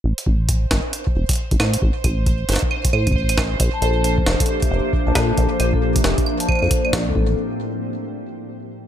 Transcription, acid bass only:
X:1
M:4/4
L:1/16
Q:"Swing 16ths" 1/4=135
K:Aphr
V:1 name="Acid bass" clef=bass
A,,, z A,,,4 G,,, z3 E,,, z2 A,,, A,, z | A,,, z A,,,4 G,,, z3 A,, A,,,4- A,,, | B,,, z B,,,4 F,,, z3 F,,, z2 B,,, B,, z | B,,, z B,,,4 F,,, z4 F,, z2 B,,, D,, |
A,,,2 z12 z2 |]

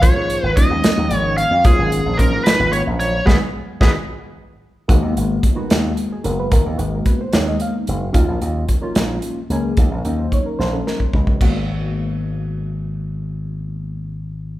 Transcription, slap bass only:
X:1
M:6/8
L:1/16
Q:3/8=74
K:G#dor
V:1 name="Slap bass" clef=bass
z G,,2 G,,, z D,, z D,, G,,,3 E,, | z G,,,2 A,,,2 G,, z G,,,2 A,,,3 | G,,, z3 G,,, z6 z | G,,, D,, G,,,2 z2 D,,2 z2 F,,,2 |
G,,, D,, G,,,2 z2 D,,2 z2 F,,,2 | D,, A,,, D,,2 z2 A,,,2 z2 C,,2 | D,, A,,, D,,2 z2 A,,,2 z2 C,,2 | G,,,12- |
G,,,12 |]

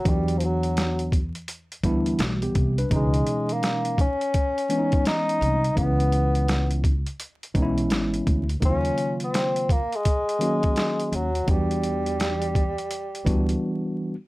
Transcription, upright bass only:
X:1
M:4/4
L:1/16
Q:"Swing 16ths" 1/4=84
K:C#dor
V:1 name="Upright bass" clef=bass
E,,6- E,, z3 =D,,2 B,,,2 ^B,,,2 | C,,2 z12 ^B,,,2 | C,,6- C,, z3 B,,,2 G,,,2 =D,,2 | D,,2 z12 D,,2 |
E,,6- E,, z3 =D,,2 z4 |]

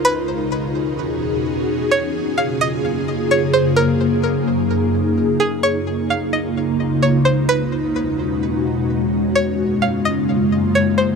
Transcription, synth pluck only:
X:1
M:4/4
L:1/8
Q:1/4=129
K:Gblyd
V:1 name="Synth pluck"
=B2 z6 | d2 f e3 d c | B2 z4 z A | d2 f e3 d c |
=B2 z6 | d2 f e3 d c |]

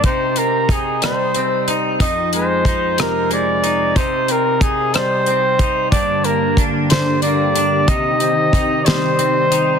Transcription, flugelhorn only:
X:1
M:6/8
L:1/8
Q:3/8=61
K:Cm
V:1 name="Flugelhorn"
c B A c2 z | e c2 B d2 | c B A c3 | d B z c d2 |
e3 c3 |]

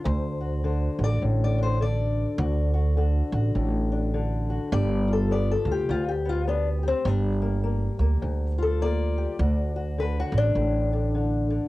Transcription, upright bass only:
X:1
M:4/4
L:1/8
Q:"Swing" 1/4=103
K:Dmix
V:1 name="Upright bass" clef=bass
D,,3 A,,, A,,,4 | D,,3 A,,, A,,,4 | G,,,3 D,, D,,4 | G,,,3 D,, D,,4 |
D,,3 A,,, A,,,4 |]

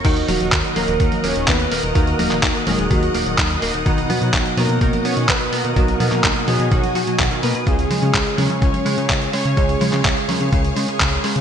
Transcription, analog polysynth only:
X:1
M:4/4
L:1/8
Q:1/4=126
K:Ebm
V:1 name="Analog polysynth"
[E,E] [G,G]2 [B,B] [B,B] [Dd] [Cc] [B,B]- | [B,B]3 [A,A] [G,G]3 z | [^D,^D] [^F,^F]2 [B,B] [B,B] [_Dd] [=B,=B] [_B,_B]- | [B,B]3 [A,A] [^F,^F]3 [B,B] |
[A,A]3 [Dd]4 [Dd]- | [Dd]2 z6 |]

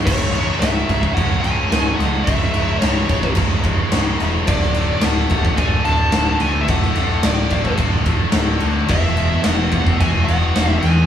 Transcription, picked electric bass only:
X:1
M:4/4
L:1/8
Q:1/4=109
K:C#phr
V:1 name="Picked electric bass" clef=bass
C,,,2 C,,, C,,, C,,, C,,, C,,, C,, | C,,, C,,, C,,, C,,, C,,,2 C,,, E,,, | D,,,2 D,,, D,,, D,,, D,,, D,,, D,, | D,,, D,,, D,,, D,,, D,,,2 D,,, D,, |
E,,,2 E,,, E,,, E,,, E,,, E,,, E,, |]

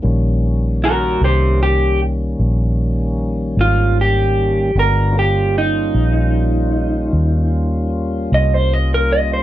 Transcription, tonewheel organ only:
X:1
M:12/8
L:1/8
Q:3/8=51
K:Ebmix
V:1 name="Tonewheel organ"
[E,G,B,D]12 | [A,_C=D_G] [=G,B,_DF]8- [G,B,DF]3 |]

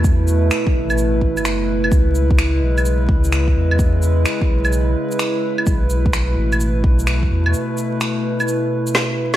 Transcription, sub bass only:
X:1
M:4/4
L:1/16
Q:"Swing 16ths" 1/4=128
K:Bmix
V:1 name="Sub bass" clef=bass
E,,4 z2 A,,,4- A,,, F,,,4- F,,, | C,,6 B,,,4 C,,4 E,,2- | E,,4 z2 B,,,4 z6 | B,,,6 A,,,4 B,,,4 E,,2 |
z16 |]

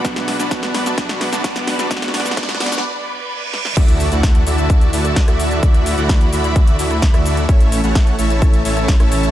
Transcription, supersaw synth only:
X:1
M:4/4
L:1/16
Q:1/4=129
K:D
V:1 name="Supersaw synth"
[B,DFdf]3 [B,DFda] [B,DFdf]3 [B,DFda] [B,DFdf]3 [B,DFda] [B,D]3 [B,DFda] | [B,DFf]2 [B,DFdf]2 [B,DFdf]2 [B,DFdf]2 z8 | [A,EFde]3 [A,EFdf]3 [A,EFde]4 [A,EFde]2 z [A,EFde]3 | z3 [A,EFdf]3 [A,EFde]4 [A,EFde]2 z [A,EFde]3 |
[A,CEc]3 [A,CEcf]3 [A,CEce]4 [A,CEce]2 z [A,CEce]3 |]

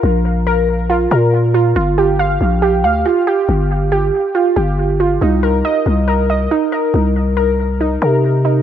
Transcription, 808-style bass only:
X:1
M:4/4
L:1/8
Q:1/4=139
K:Cm
V:1 name="808-style bass" clef=bass
B,,,4- B,,, B,,3 | G,,,3 B,,,2 D,, z2 | G,,,3 z2 G,,,3 | C,,2 z C,,3 z2 |
C,,4- C,, C,3 |]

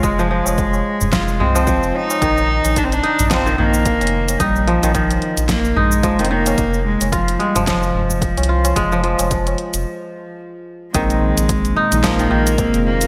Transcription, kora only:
X:1
M:4/4
L:1/16
Q:"Swing 16ths" 1/4=110
K:Bbdor
V:1 name="Kora" clef=bass
A, F, F,4 z2 F2 A, F, F,4 | E,4 z2 E2 F, E, E,4 z2 | E2 F, E, E,4 z2 E2 F, E, E,2 | z4 F2 A, F, F,4 z2 F2 |
A, F, F,4 z8 z2 | E,4 z2 E2 F, E, E,4 z2 |]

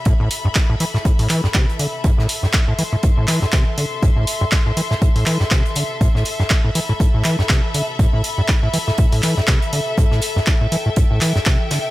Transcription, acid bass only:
X:1
M:4/4
L:1/16
Q:"Swing 16ths" 1/4=121
K:Am
V:1 name="Acid bass" clef=bass
A,, A,, z G,, z A,, E, A,, A,, A,, E, G,, C, z D, z | A,, A,, z G,, z A,, E, A,, A,, A,, E, G,, C, z D, z | A,, A,, z G,, z A,, E, A,, A,, A,, E, G,, C, z D, z | A,, A,, z G,, z A,, E, A,, A,, A,, E, G,, C, z D, z |
A,, A,, z G,, z A,, E, A,, A,, A,, E, G,, C, z D, z | A,, A,, z G,, z A,, E, A,, A,, A,, E, G,, C, z D, z |]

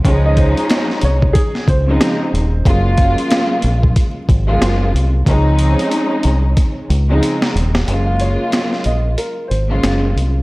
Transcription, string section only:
X:1
M:4/4
L:1/16
Q:"Swing 16ths" 1/4=92
K:Gblyd
V:1 name="String section" clef=bass
[F,A,DE]8- [F,A,DE]2 z [D,F,A,CE]4 z | [D,G,A,B,F]8- [D,G,A,B,F]2 z [D,G,A,B,F]4 z | [F,A,CDE]8- [F,A,CDE]2 z [D,F,A,CE]4 z | [D,G,A,B,F]8- [D,G,A,B,F]2 z [D,G,A,B,F]4 z |]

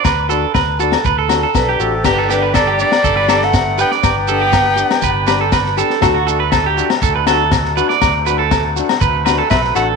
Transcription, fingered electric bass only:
X:1
M:4/4
L:1/8
Q:1/4=121
K:G
V:1 name="Fingered electric bass" clef=bass
D,,2 D,,2 D,,2 B,,, A,,, | G,,,4 G,,,4 | G,,,4 G,,,4 | D,,4 D,,4 |
D,,4 D,,2 B,,, A,,, |]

